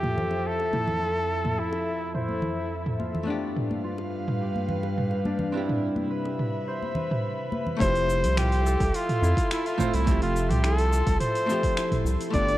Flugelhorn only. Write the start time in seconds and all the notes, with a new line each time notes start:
Already playing: G4
0.47 A4
1.59 E4
2.16 E4
7.81 C5
8.39 G4
8.95 F4
9.52 E4
9.67 F4
9.95 E4
10.22 F4
10.50 G4
10.64 A4
11.21 C5
12.34 D5